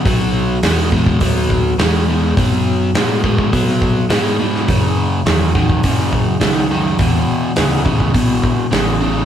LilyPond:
<<
  \new Staff \with { instrumentName = "Overdriven electric guitar" } { \clef bass \time 4/4 \key b \mixolydian \tempo 4 = 104 <b, fis>4 <b, gis>8 <b, gis>8 <b, fis>4 <b, gis>8 <b, gis>8 | <b, fis>4 <b, gis>8 <b, gis>8 <b, fis>4 <b, gis>8 <b, gis>8 | <fis, cis>4 <fis, dis>8 <fis, dis>8 <fis, cis>4 <fis, dis>8 <fis, dis>8 | <e, b,>4 <e, cis>8 <e, cis>8 <e, b,>4 <e, cis>8 <e, cis>8 | }
  \new Staff \with { instrumentName = "Fingered electric bass" } { \clef bass \time 4/4 \key b \mixolydian b,,4 e,4 dis,4 e,4 | fis,4 a,4 b,4 gis,4 | fis,4 e,4 fis,4 cis,4 | e,8 r8 d,4 b,,8 r8 a,,4 | }
  \new DrumStaff \with { instrumentName = "Drums" } \drummode { \time 4/4 <hho bd>4 <hho sn>8 bd16 bd16 <hho bd>8 bd8 <hho sn>4 | <hho bd>4 <hho sn>8 bd16 bd16 <hho bd>16 sn16 bd8 <hho sn>8. sn16 | <hho bd>4 <hho sn>8 bd16 bd16 <hho bd>16 sn16 bd8 <hho sn>4 | <hho bd>4 <hho sn>8 bd16 bd16 <hho bd>8 bd8 <hho sn>4 | }
>>